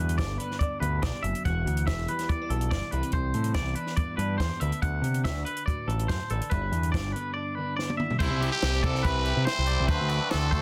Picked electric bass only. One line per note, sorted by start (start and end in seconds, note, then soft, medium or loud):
0.00 0.20 E2 medium
0.19 0.37 G1 medium
0.81 0.99 D2 medium
1.03 1.12 B1 medium
1.23 1.32 F#1 loud
1.46 1.64 E1 medium
1.66 1.89 D2 medium
1.88 2.05 E1 medium
2.50 2.68 B1 medium
2.93 3.02 C2 medium
3.13 3.32 C2 loud
3.34 3.57 A2 medium
3.55 3.74 C2 medium
4.18 4.37 G2 medium
4.40 4.49 E2 medium
4.62 4.71 D2 medium
4.83 5.01 D2 loud
5.02 5.27 C3 medium
5.25 5.43 D2 medium
5.87 6.06 A1 medium
6.09 6.18 F#2 medium
6.30 6.40 A1 medium
6.52 6.70 G1 medium
6.72 6.96 E2 medium
6.95 7.13 G1 medium
8.20 8.30 C2 loud
8.30 8.49 C2 loud
8.63 8.81 C2 medium
8.84 9.02 C2 loud
9.04 9.32 C2 medium
9.37 9.46 C3 medium
9.58 9.76 C2 medium
9.80 9.88 C2 loud
9.88 9.98 D2 loud
10.01 10.19 D2 medium
10.34 10.51 D2 medium
10.53 10.62 D2 loud